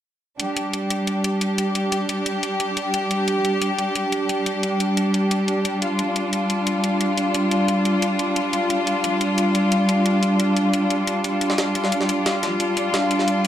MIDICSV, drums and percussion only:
0, 0, Header, 1, 2, 480
1, 0, Start_track
1, 0, Tempo, 338983
1, 561, Time_signature, 4, 2, 24, 8
1, 19076, End_track
2, 0, Start_track
2, 0, Title_t, "Drums"
2, 560, Note_on_c, 9, 42, 77
2, 701, Note_off_c, 9, 42, 0
2, 800, Note_on_c, 9, 42, 88
2, 942, Note_off_c, 9, 42, 0
2, 1040, Note_on_c, 9, 42, 76
2, 1182, Note_off_c, 9, 42, 0
2, 1281, Note_on_c, 9, 42, 97
2, 1422, Note_off_c, 9, 42, 0
2, 1520, Note_on_c, 9, 42, 76
2, 1662, Note_off_c, 9, 42, 0
2, 1761, Note_on_c, 9, 42, 93
2, 1902, Note_off_c, 9, 42, 0
2, 2000, Note_on_c, 9, 42, 79
2, 2142, Note_off_c, 9, 42, 0
2, 2240, Note_on_c, 9, 42, 94
2, 2382, Note_off_c, 9, 42, 0
2, 2480, Note_on_c, 9, 42, 76
2, 2622, Note_off_c, 9, 42, 0
2, 2720, Note_on_c, 9, 42, 88
2, 2862, Note_off_c, 9, 42, 0
2, 2960, Note_on_c, 9, 42, 76
2, 3102, Note_off_c, 9, 42, 0
2, 3201, Note_on_c, 9, 42, 92
2, 3342, Note_off_c, 9, 42, 0
2, 3441, Note_on_c, 9, 42, 74
2, 3583, Note_off_c, 9, 42, 0
2, 3681, Note_on_c, 9, 42, 88
2, 3823, Note_off_c, 9, 42, 0
2, 3921, Note_on_c, 9, 42, 76
2, 4062, Note_off_c, 9, 42, 0
2, 4160, Note_on_c, 9, 42, 90
2, 4302, Note_off_c, 9, 42, 0
2, 4400, Note_on_c, 9, 42, 72
2, 4542, Note_off_c, 9, 42, 0
2, 4641, Note_on_c, 9, 42, 84
2, 4782, Note_off_c, 9, 42, 0
2, 4881, Note_on_c, 9, 42, 71
2, 5022, Note_off_c, 9, 42, 0
2, 5120, Note_on_c, 9, 42, 88
2, 5262, Note_off_c, 9, 42, 0
2, 5360, Note_on_c, 9, 42, 71
2, 5502, Note_off_c, 9, 42, 0
2, 5600, Note_on_c, 9, 42, 89
2, 5742, Note_off_c, 9, 42, 0
2, 5840, Note_on_c, 9, 42, 74
2, 5981, Note_off_c, 9, 42, 0
2, 6080, Note_on_c, 9, 42, 86
2, 6221, Note_off_c, 9, 42, 0
2, 6319, Note_on_c, 9, 42, 72
2, 6461, Note_off_c, 9, 42, 0
2, 6559, Note_on_c, 9, 42, 83
2, 6701, Note_off_c, 9, 42, 0
2, 6800, Note_on_c, 9, 42, 72
2, 6941, Note_off_c, 9, 42, 0
2, 7040, Note_on_c, 9, 42, 85
2, 7182, Note_off_c, 9, 42, 0
2, 7280, Note_on_c, 9, 42, 72
2, 7422, Note_off_c, 9, 42, 0
2, 7521, Note_on_c, 9, 42, 82
2, 7662, Note_off_c, 9, 42, 0
2, 7761, Note_on_c, 9, 42, 71
2, 7902, Note_off_c, 9, 42, 0
2, 8001, Note_on_c, 9, 42, 82
2, 8142, Note_off_c, 9, 42, 0
2, 8241, Note_on_c, 9, 42, 74
2, 8383, Note_off_c, 9, 42, 0
2, 8481, Note_on_c, 9, 42, 81
2, 8622, Note_off_c, 9, 42, 0
2, 8721, Note_on_c, 9, 42, 72
2, 8862, Note_off_c, 9, 42, 0
2, 8961, Note_on_c, 9, 42, 85
2, 9102, Note_off_c, 9, 42, 0
2, 9201, Note_on_c, 9, 42, 71
2, 9343, Note_off_c, 9, 42, 0
2, 9441, Note_on_c, 9, 42, 84
2, 9582, Note_off_c, 9, 42, 0
2, 9681, Note_on_c, 9, 42, 72
2, 9823, Note_off_c, 9, 42, 0
2, 9921, Note_on_c, 9, 42, 85
2, 10062, Note_off_c, 9, 42, 0
2, 10160, Note_on_c, 9, 42, 74
2, 10302, Note_off_c, 9, 42, 0
2, 10400, Note_on_c, 9, 42, 87
2, 10542, Note_off_c, 9, 42, 0
2, 10640, Note_on_c, 9, 42, 71
2, 10782, Note_off_c, 9, 42, 0
2, 10880, Note_on_c, 9, 42, 87
2, 11022, Note_off_c, 9, 42, 0
2, 11120, Note_on_c, 9, 42, 74
2, 11262, Note_off_c, 9, 42, 0
2, 11360, Note_on_c, 9, 42, 89
2, 11502, Note_off_c, 9, 42, 0
2, 11601, Note_on_c, 9, 42, 76
2, 11742, Note_off_c, 9, 42, 0
2, 11841, Note_on_c, 9, 42, 89
2, 11983, Note_off_c, 9, 42, 0
2, 12081, Note_on_c, 9, 42, 78
2, 12222, Note_off_c, 9, 42, 0
2, 12320, Note_on_c, 9, 42, 91
2, 12462, Note_off_c, 9, 42, 0
2, 12560, Note_on_c, 9, 42, 76
2, 12702, Note_off_c, 9, 42, 0
2, 12801, Note_on_c, 9, 42, 94
2, 12942, Note_off_c, 9, 42, 0
2, 13040, Note_on_c, 9, 42, 79
2, 13182, Note_off_c, 9, 42, 0
2, 13280, Note_on_c, 9, 42, 91
2, 13422, Note_off_c, 9, 42, 0
2, 13520, Note_on_c, 9, 42, 77
2, 13662, Note_off_c, 9, 42, 0
2, 13761, Note_on_c, 9, 42, 93
2, 13902, Note_off_c, 9, 42, 0
2, 14001, Note_on_c, 9, 42, 80
2, 14142, Note_off_c, 9, 42, 0
2, 14240, Note_on_c, 9, 42, 91
2, 14382, Note_off_c, 9, 42, 0
2, 14480, Note_on_c, 9, 42, 79
2, 14622, Note_off_c, 9, 42, 0
2, 14720, Note_on_c, 9, 42, 98
2, 14862, Note_off_c, 9, 42, 0
2, 14960, Note_on_c, 9, 42, 79
2, 15102, Note_off_c, 9, 42, 0
2, 15200, Note_on_c, 9, 42, 93
2, 15342, Note_off_c, 9, 42, 0
2, 15441, Note_on_c, 9, 42, 80
2, 15582, Note_off_c, 9, 42, 0
2, 15681, Note_on_c, 9, 42, 92
2, 15822, Note_off_c, 9, 42, 0
2, 15921, Note_on_c, 9, 42, 85
2, 16062, Note_off_c, 9, 42, 0
2, 16160, Note_on_c, 9, 42, 66
2, 16281, Note_on_c, 9, 38, 55
2, 16302, Note_off_c, 9, 42, 0
2, 16400, Note_off_c, 9, 38, 0
2, 16400, Note_on_c, 9, 38, 112
2, 16400, Note_on_c, 9, 42, 86
2, 16542, Note_off_c, 9, 38, 0
2, 16542, Note_off_c, 9, 42, 0
2, 16640, Note_on_c, 9, 42, 96
2, 16641, Note_off_c, 9, 42, 0
2, 16641, Note_on_c, 9, 42, 65
2, 16761, Note_on_c, 9, 38, 36
2, 16782, Note_off_c, 9, 42, 0
2, 16880, Note_on_c, 9, 42, 80
2, 16881, Note_off_c, 9, 42, 0
2, 16881, Note_on_c, 9, 42, 86
2, 16903, Note_off_c, 9, 38, 0
2, 17001, Note_on_c, 9, 38, 49
2, 17022, Note_off_c, 9, 42, 0
2, 17120, Note_on_c, 9, 42, 92
2, 17121, Note_off_c, 9, 42, 0
2, 17121, Note_on_c, 9, 42, 67
2, 17143, Note_off_c, 9, 38, 0
2, 17262, Note_off_c, 9, 42, 0
2, 17360, Note_on_c, 9, 42, 81
2, 17361, Note_off_c, 9, 42, 0
2, 17361, Note_on_c, 9, 38, 114
2, 17361, Note_on_c, 9, 42, 85
2, 17502, Note_off_c, 9, 38, 0
2, 17502, Note_off_c, 9, 42, 0
2, 17600, Note_on_c, 9, 38, 38
2, 17600, Note_on_c, 9, 42, 67
2, 17601, Note_off_c, 9, 42, 0
2, 17601, Note_on_c, 9, 42, 92
2, 17742, Note_off_c, 9, 38, 0
2, 17742, Note_off_c, 9, 42, 0
2, 17841, Note_on_c, 9, 42, 79
2, 17983, Note_off_c, 9, 42, 0
2, 18081, Note_on_c, 9, 42, 67
2, 18222, Note_off_c, 9, 42, 0
2, 18320, Note_on_c, 9, 38, 115
2, 18320, Note_on_c, 9, 42, 88
2, 18462, Note_off_c, 9, 38, 0
2, 18462, Note_off_c, 9, 42, 0
2, 18561, Note_on_c, 9, 42, 93
2, 18680, Note_on_c, 9, 38, 38
2, 18702, Note_off_c, 9, 42, 0
2, 18800, Note_on_c, 9, 42, 86
2, 18801, Note_off_c, 9, 42, 0
2, 18801, Note_on_c, 9, 42, 77
2, 18822, Note_off_c, 9, 38, 0
2, 18942, Note_off_c, 9, 42, 0
2, 19076, End_track
0, 0, End_of_file